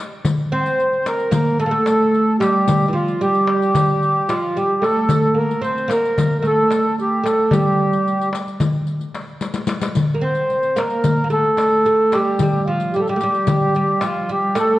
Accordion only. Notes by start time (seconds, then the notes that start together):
0.53 C5
1.08 A#4
1.34 A#4
1.60 A4
2.40 G4
2.94 F4
3.21 G4
4.29 F4
4.56 G4
4.82 A4
5.37 A#4
5.64 C5
5.92 A#4
6.39 A#4
6.46 A4
7.01 G4
7.25 A4
7.51 G4
10.24 C5
10.78 A#4
11.32 A4
12.11 G4
12.68 F4
12.93 G4
13.00 A4
13.09 G4
14.04 F4
14.31 G4
14.59 A4